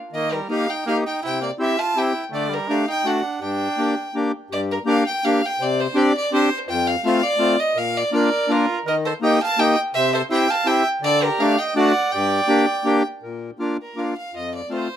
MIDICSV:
0, 0, Header, 1, 4, 480
1, 0, Start_track
1, 0, Key_signature, -2, "minor"
1, 0, Tempo, 364742
1, 179, Time_signature, 3, 2, 24, 8
1, 7378, Tempo, 361664
1, 16018, Tempo, 371747
1, 19699, End_track
2, 0, Start_track
2, 0, Title_t, "Fiddle"
2, 0, Program_c, 0, 110
2, 185, Note_on_c, 0, 75, 94
2, 430, Note_on_c, 0, 70, 77
2, 450, Note_off_c, 0, 75, 0
2, 660, Note_off_c, 0, 70, 0
2, 668, Note_on_c, 0, 77, 91
2, 918, Note_on_c, 0, 79, 93
2, 938, Note_off_c, 0, 77, 0
2, 1149, Note_off_c, 0, 79, 0
2, 1162, Note_on_c, 0, 77, 96
2, 1268, Note_off_c, 0, 77, 0
2, 1405, Note_on_c, 0, 79, 76
2, 1615, Note_off_c, 0, 79, 0
2, 1632, Note_on_c, 0, 79, 92
2, 1854, Note_off_c, 0, 79, 0
2, 1881, Note_on_c, 0, 74, 77
2, 1983, Note_off_c, 0, 74, 0
2, 2133, Note_on_c, 0, 76, 106
2, 2358, Note_on_c, 0, 81, 100
2, 2377, Note_off_c, 0, 76, 0
2, 2613, Note_on_c, 0, 79, 98
2, 2633, Note_off_c, 0, 81, 0
2, 2954, Note_off_c, 0, 79, 0
2, 3082, Note_on_c, 0, 74, 81
2, 3342, Note_on_c, 0, 70, 84
2, 3362, Note_off_c, 0, 74, 0
2, 3569, Note_on_c, 0, 77, 93
2, 3588, Note_off_c, 0, 70, 0
2, 3793, Note_off_c, 0, 77, 0
2, 3810, Note_on_c, 0, 79, 97
2, 4047, Note_on_c, 0, 78, 84
2, 4066, Note_off_c, 0, 79, 0
2, 4505, Note_off_c, 0, 78, 0
2, 4513, Note_on_c, 0, 79, 86
2, 5414, Note_off_c, 0, 79, 0
2, 5957, Note_on_c, 0, 74, 85
2, 6063, Note_off_c, 0, 74, 0
2, 6202, Note_on_c, 0, 70, 82
2, 6304, Note_off_c, 0, 70, 0
2, 6422, Note_on_c, 0, 77, 103
2, 6648, Note_off_c, 0, 77, 0
2, 6668, Note_on_c, 0, 79, 98
2, 6903, Note_on_c, 0, 77, 93
2, 6923, Note_off_c, 0, 79, 0
2, 7177, Note_on_c, 0, 79, 93
2, 7196, Note_off_c, 0, 77, 0
2, 7401, Note_on_c, 0, 74, 95
2, 7421, Note_off_c, 0, 79, 0
2, 7639, Note_on_c, 0, 72, 86
2, 7659, Note_off_c, 0, 74, 0
2, 7867, Note_on_c, 0, 74, 104
2, 7887, Note_off_c, 0, 72, 0
2, 8107, Note_off_c, 0, 74, 0
2, 8126, Note_on_c, 0, 74, 95
2, 8334, Note_off_c, 0, 74, 0
2, 8347, Note_on_c, 0, 72, 104
2, 8678, Note_off_c, 0, 72, 0
2, 8820, Note_on_c, 0, 79, 105
2, 9058, Note_on_c, 0, 77, 96
2, 9078, Note_off_c, 0, 79, 0
2, 9287, Note_off_c, 0, 77, 0
2, 9295, Note_on_c, 0, 77, 101
2, 9540, Note_on_c, 0, 74, 116
2, 9560, Note_off_c, 0, 77, 0
2, 10025, Note_on_c, 0, 75, 93
2, 10045, Note_off_c, 0, 74, 0
2, 10263, Note_on_c, 0, 77, 104
2, 10283, Note_off_c, 0, 75, 0
2, 10515, Note_on_c, 0, 74, 93
2, 10535, Note_off_c, 0, 77, 0
2, 10732, Note_off_c, 0, 74, 0
2, 10740, Note_on_c, 0, 74, 90
2, 11239, Note_on_c, 0, 70, 93
2, 11259, Note_off_c, 0, 74, 0
2, 11593, Note_off_c, 0, 70, 0
2, 11723, Note_on_c, 0, 75, 87
2, 11829, Note_off_c, 0, 75, 0
2, 11953, Note_on_c, 0, 72, 84
2, 12059, Note_off_c, 0, 72, 0
2, 12197, Note_on_c, 0, 79, 102
2, 12420, Note_off_c, 0, 79, 0
2, 12445, Note_on_c, 0, 81, 115
2, 12669, Note_on_c, 0, 79, 115
2, 12689, Note_off_c, 0, 81, 0
2, 12912, Note_off_c, 0, 79, 0
2, 13130, Note_on_c, 0, 76, 115
2, 13364, Note_off_c, 0, 76, 0
2, 13398, Note_on_c, 0, 72, 96
2, 13502, Note_off_c, 0, 72, 0
2, 13619, Note_on_c, 0, 79, 108
2, 13880, Note_on_c, 0, 81, 109
2, 13900, Note_off_c, 0, 79, 0
2, 14095, Note_on_c, 0, 79, 110
2, 14115, Note_off_c, 0, 81, 0
2, 14342, Note_off_c, 0, 79, 0
2, 14589, Note_on_c, 0, 74, 117
2, 14843, Note_on_c, 0, 70, 101
2, 14863, Note_off_c, 0, 74, 0
2, 15076, Note_on_c, 0, 77, 109
2, 15096, Note_off_c, 0, 70, 0
2, 15311, Note_on_c, 0, 79, 97
2, 15331, Note_off_c, 0, 77, 0
2, 15542, Note_off_c, 0, 79, 0
2, 15572, Note_on_c, 0, 78, 106
2, 16018, Note_on_c, 0, 79, 103
2, 16037, Note_off_c, 0, 78, 0
2, 17220, Note_off_c, 0, 79, 0
2, 18218, Note_on_c, 0, 70, 59
2, 18441, Note_on_c, 0, 77, 62
2, 18460, Note_off_c, 0, 70, 0
2, 18667, Note_off_c, 0, 77, 0
2, 18674, Note_on_c, 0, 77, 68
2, 18889, Note_off_c, 0, 77, 0
2, 18912, Note_on_c, 0, 75, 74
2, 19134, Note_off_c, 0, 75, 0
2, 19153, Note_on_c, 0, 74, 63
2, 19369, Note_off_c, 0, 74, 0
2, 19403, Note_on_c, 0, 72, 73
2, 19699, Note_off_c, 0, 72, 0
2, 19699, End_track
3, 0, Start_track
3, 0, Title_t, "Trumpet"
3, 0, Program_c, 1, 56
3, 185, Note_on_c, 1, 58, 81
3, 428, Note_on_c, 1, 55, 69
3, 448, Note_off_c, 1, 58, 0
3, 644, Note_off_c, 1, 55, 0
3, 652, Note_on_c, 1, 58, 68
3, 891, Note_on_c, 1, 63, 65
3, 911, Note_off_c, 1, 58, 0
3, 1118, Note_off_c, 1, 63, 0
3, 1126, Note_on_c, 1, 58, 87
3, 1240, Note_off_c, 1, 58, 0
3, 1349, Note_on_c, 1, 63, 73
3, 1586, Note_off_c, 1, 63, 0
3, 1617, Note_on_c, 1, 64, 86
3, 1846, Note_off_c, 1, 64, 0
3, 1860, Note_on_c, 1, 58, 64
3, 1967, Note_off_c, 1, 58, 0
3, 2086, Note_on_c, 1, 60, 77
3, 2326, Note_on_c, 1, 65, 81
3, 2346, Note_off_c, 1, 60, 0
3, 2578, Note_on_c, 1, 64, 86
3, 2597, Note_off_c, 1, 65, 0
3, 2936, Note_off_c, 1, 64, 0
3, 3041, Note_on_c, 1, 57, 88
3, 3283, Note_on_c, 1, 55, 74
3, 3303, Note_off_c, 1, 57, 0
3, 3533, Note_on_c, 1, 62, 77
3, 3553, Note_off_c, 1, 55, 0
3, 3764, Note_off_c, 1, 62, 0
3, 3772, Note_on_c, 1, 63, 74
3, 4029, Note_on_c, 1, 62, 79
3, 4048, Note_off_c, 1, 63, 0
3, 4492, Note_off_c, 1, 62, 0
3, 4499, Note_on_c, 1, 62, 82
3, 5408, Note_off_c, 1, 62, 0
3, 10757, Note_on_c, 1, 70, 84
3, 11245, Note_on_c, 1, 65, 91
3, 11265, Note_off_c, 1, 70, 0
3, 11596, Note_off_c, 1, 65, 0
3, 11703, Note_on_c, 1, 70, 87
3, 11814, Note_off_c, 1, 70, 0
3, 11956, Note_on_c, 1, 69, 71
3, 12061, Note_off_c, 1, 69, 0
3, 12194, Note_on_c, 1, 75, 84
3, 12418, Note_off_c, 1, 75, 0
3, 12444, Note_on_c, 1, 77, 84
3, 12697, Note_on_c, 1, 75, 103
3, 12717, Note_off_c, 1, 77, 0
3, 12926, Note_off_c, 1, 75, 0
3, 13165, Note_on_c, 1, 72, 86
3, 13382, Note_off_c, 1, 72, 0
3, 13393, Note_on_c, 1, 69, 78
3, 13498, Note_off_c, 1, 69, 0
3, 13614, Note_on_c, 1, 76, 84
3, 13864, Note_on_c, 1, 77, 87
3, 13883, Note_off_c, 1, 76, 0
3, 14122, Note_on_c, 1, 76, 91
3, 14142, Note_off_c, 1, 77, 0
3, 14356, Note_off_c, 1, 76, 0
3, 14606, Note_on_c, 1, 69, 93
3, 14847, Note_on_c, 1, 67, 78
3, 14867, Note_off_c, 1, 69, 0
3, 15090, Note_on_c, 1, 74, 84
3, 15110, Note_off_c, 1, 67, 0
3, 15328, Note_on_c, 1, 75, 82
3, 15348, Note_off_c, 1, 74, 0
3, 15539, Note_off_c, 1, 75, 0
3, 15547, Note_on_c, 1, 74, 103
3, 16028, Note_off_c, 1, 74, 0
3, 16028, Note_on_c, 1, 74, 98
3, 17225, Note_off_c, 1, 74, 0
3, 19699, End_track
4, 0, Start_track
4, 0, Title_t, "Accordion"
4, 0, Program_c, 2, 21
4, 166, Note_on_c, 2, 51, 57
4, 534, Note_off_c, 2, 51, 0
4, 649, Note_on_c, 2, 58, 66
4, 657, Note_on_c, 2, 63, 55
4, 670, Note_on_c, 2, 67, 66
4, 877, Note_off_c, 2, 58, 0
4, 881, Note_off_c, 2, 63, 0
4, 887, Note_off_c, 2, 67, 0
4, 1151, Note_on_c, 2, 58, 55
4, 1152, Note_on_c, 2, 63, 55
4, 1165, Note_on_c, 2, 67, 65
4, 1367, Note_off_c, 2, 58, 0
4, 1367, Note_off_c, 2, 63, 0
4, 1374, Note_off_c, 2, 67, 0
4, 1643, Note_on_c, 2, 48, 57
4, 1990, Note_off_c, 2, 48, 0
4, 2088, Note_on_c, 2, 60, 69
4, 2096, Note_on_c, 2, 64, 62
4, 2106, Note_on_c, 2, 67, 67
4, 2312, Note_off_c, 2, 60, 0
4, 2316, Note_off_c, 2, 64, 0
4, 2321, Note_off_c, 2, 67, 0
4, 2581, Note_on_c, 2, 60, 61
4, 2582, Note_on_c, 2, 64, 52
4, 2591, Note_on_c, 2, 67, 71
4, 2797, Note_off_c, 2, 60, 0
4, 2797, Note_off_c, 2, 64, 0
4, 2801, Note_off_c, 2, 67, 0
4, 3049, Note_on_c, 2, 50, 70
4, 3408, Note_off_c, 2, 50, 0
4, 3546, Note_on_c, 2, 62, 66
4, 3547, Note_on_c, 2, 57, 69
4, 3556, Note_on_c, 2, 67, 66
4, 3757, Note_off_c, 2, 62, 0
4, 3758, Note_off_c, 2, 57, 0
4, 3763, Note_off_c, 2, 67, 0
4, 4005, Note_on_c, 2, 57, 63
4, 4021, Note_on_c, 2, 62, 47
4, 4021, Note_on_c, 2, 66, 64
4, 4228, Note_off_c, 2, 57, 0
4, 4236, Note_off_c, 2, 62, 0
4, 4236, Note_off_c, 2, 66, 0
4, 4480, Note_on_c, 2, 43, 63
4, 4844, Note_off_c, 2, 43, 0
4, 4966, Note_on_c, 2, 58, 62
4, 4973, Note_on_c, 2, 62, 58
4, 4992, Note_on_c, 2, 67, 67
4, 5190, Note_off_c, 2, 58, 0
4, 5194, Note_off_c, 2, 62, 0
4, 5203, Note_off_c, 2, 67, 0
4, 5460, Note_on_c, 2, 58, 68
4, 5465, Note_on_c, 2, 62, 61
4, 5474, Note_on_c, 2, 67, 69
4, 5680, Note_off_c, 2, 58, 0
4, 5683, Note_off_c, 2, 62, 0
4, 5687, Note_off_c, 2, 67, 0
4, 5929, Note_on_c, 2, 43, 67
4, 6293, Note_off_c, 2, 43, 0
4, 6387, Note_on_c, 2, 58, 74
4, 6403, Note_on_c, 2, 67, 83
4, 6407, Note_on_c, 2, 62, 66
4, 6623, Note_off_c, 2, 58, 0
4, 6631, Note_off_c, 2, 67, 0
4, 6633, Note_off_c, 2, 62, 0
4, 6906, Note_on_c, 2, 58, 66
4, 6911, Note_on_c, 2, 62, 57
4, 6924, Note_on_c, 2, 67, 74
4, 7123, Note_off_c, 2, 58, 0
4, 7125, Note_off_c, 2, 62, 0
4, 7132, Note_off_c, 2, 67, 0
4, 7366, Note_on_c, 2, 48, 77
4, 7732, Note_off_c, 2, 48, 0
4, 7831, Note_on_c, 2, 60, 75
4, 7831, Note_on_c, 2, 62, 67
4, 7841, Note_on_c, 2, 67, 92
4, 8065, Note_off_c, 2, 60, 0
4, 8065, Note_off_c, 2, 62, 0
4, 8070, Note_off_c, 2, 67, 0
4, 8331, Note_on_c, 2, 60, 65
4, 8335, Note_on_c, 2, 62, 70
4, 8342, Note_on_c, 2, 67, 80
4, 8554, Note_off_c, 2, 60, 0
4, 8556, Note_off_c, 2, 62, 0
4, 8559, Note_off_c, 2, 67, 0
4, 8809, Note_on_c, 2, 41, 77
4, 9169, Note_off_c, 2, 41, 0
4, 9291, Note_on_c, 2, 57, 73
4, 9302, Note_on_c, 2, 60, 69
4, 9304, Note_on_c, 2, 65, 83
4, 9511, Note_off_c, 2, 57, 0
4, 9517, Note_off_c, 2, 60, 0
4, 9518, Note_off_c, 2, 65, 0
4, 9730, Note_on_c, 2, 57, 72
4, 9746, Note_on_c, 2, 60, 63
4, 9753, Note_on_c, 2, 65, 77
4, 9970, Note_off_c, 2, 57, 0
4, 9977, Note_off_c, 2, 60, 0
4, 9981, Note_off_c, 2, 65, 0
4, 10227, Note_on_c, 2, 46, 66
4, 10598, Note_off_c, 2, 46, 0
4, 10713, Note_on_c, 2, 58, 75
4, 10720, Note_on_c, 2, 62, 68
4, 10728, Note_on_c, 2, 65, 77
4, 10944, Note_off_c, 2, 58, 0
4, 10948, Note_off_c, 2, 62, 0
4, 10951, Note_off_c, 2, 65, 0
4, 11198, Note_on_c, 2, 62, 60
4, 11199, Note_on_c, 2, 58, 65
4, 11215, Note_on_c, 2, 65, 74
4, 11430, Note_off_c, 2, 58, 0
4, 11430, Note_off_c, 2, 62, 0
4, 11438, Note_off_c, 2, 65, 0
4, 11689, Note_on_c, 2, 51, 69
4, 12056, Note_off_c, 2, 51, 0
4, 12170, Note_on_c, 2, 58, 73
4, 12184, Note_on_c, 2, 63, 68
4, 12186, Note_on_c, 2, 67, 81
4, 12398, Note_off_c, 2, 58, 0
4, 12405, Note_off_c, 2, 63, 0
4, 12407, Note_off_c, 2, 67, 0
4, 12652, Note_on_c, 2, 58, 65
4, 12667, Note_on_c, 2, 67, 79
4, 12668, Note_on_c, 2, 63, 59
4, 12879, Note_off_c, 2, 58, 0
4, 12886, Note_off_c, 2, 67, 0
4, 12887, Note_off_c, 2, 63, 0
4, 13142, Note_on_c, 2, 48, 77
4, 13501, Note_off_c, 2, 48, 0
4, 13611, Note_on_c, 2, 60, 66
4, 13618, Note_on_c, 2, 64, 71
4, 13629, Note_on_c, 2, 67, 84
4, 13837, Note_off_c, 2, 60, 0
4, 13840, Note_off_c, 2, 64, 0
4, 13845, Note_off_c, 2, 67, 0
4, 14077, Note_on_c, 2, 60, 72
4, 14086, Note_on_c, 2, 64, 64
4, 14092, Note_on_c, 2, 67, 76
4, 14309, Note_off_c, 2, 60, 0
4, 14313, Note_off_c, 2, 64, 0
4, 14316, Note_off_c, 2, 67, 0
4, 14559, Note_on_c, 2, 50, 86
4, 14927, Note_off_c, 2, 50, 0
4, 15071, Note_on_c, 2, 57, 78
4, 15074, Note_on_c, 2, 62, 77
4, 15085, Note_on_c, 2, 67, 80
4, 15284, Note_off_c, 2, 57, 0
4, 15286, Note_off_c, 2, 62, 0
4, 15291, Note_off_c, 2, 67, 0
4, 15541, Note_on_c, 2, 62, 68
4, 15543, Note_on_c, 2, 57, 72
4, 15557, Note_on_c, 2, 66, 87
4, 15760, Note_off_c, 2, 62, 0
4, 15761, Note_off_c, 2, 57, 0
4, 15768, Note_off_c, 2, 66, 0
4, 16052, Note_on_c, 2, 43, 77
4, 16392, Note_off_c, 2, 43, 0
4, 16487, Note_on_c, 2, 58, 72
4, 16496, Note_on_c, 2, 62, 63
4, 16498, Note_on_c, 2, 67, 86
4, 16710, Note_off_c, 2, 58, 0
4, 16715, Note_off_c, 2, 62, 0
4, 16716, Note_off_c, 2, 67, 0
4, 16958, Note_on_c, 2, 58, 79
4, 16969, Note_on_c, 2, 62, 79
4, 16979, Note_on_c, 2, 67, 75
4, 17188, Note_off_c, 2, 58, 0
4, 17194, Note_off_c, 2, 62, 0
4, 17199, Note_off_c, 2, 67, 0
4, 17452, Note_on_c, 2, 46, 59
4, 17815, Note_off_c, 2, 46, 0
4, 17924, Note_on_c, 2, 58, 62
4, 17929, Note_on_c, 2, 65, 62
4, 17932, Note_on_c, 2, 62, 55
4, 18153, Note_off_c, 2, 58, 0
4, 18156, Note_off_c, 2, 65, 0
4, 18157, Note_off_c, 2, 62, 0
4, 18399, Note_on_c, 2, 58, 45
4, 18408, Note_on_c, 2, 62, 44
4, 18415, Note_on_c, 2, 65, 51
4, 18629, Note_off_c, 2, 58, 0
4, 18634, Note_off_c, 2, 62, 0
4, 18638, Note_off_c, 2, 65, 0
4, 18881, Note_on_c, 2, 41, 52
4, 19249, Note_off_c, 2, 41, 0
4, 19348, Note_on_c, 2, 60, 44
4, 19349, Note_on_c, 2, 57, 49
4, 19364, Note_on_c, 2, 65, 58
4, 19584, Note_off_c, 2, 60, 0
4, 19585, Note_off_c, 2, 57, 0
4, 19592, Note_off_c, 2, 65, 0
4, 19699, End_track
0, 0, End_of_file